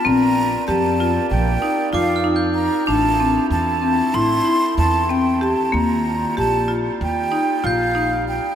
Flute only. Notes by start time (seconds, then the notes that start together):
0.07 A#5
0.67 A5
1.30 G5
1.93 F5
2.55 A#5
2.87 A5
3.52 A5
4.15 C6
4.78 A5
5.10 G5
5.43 A5
5.74 A#5
6.38 A5
7.02 G5
7.65 F5
8.28 G5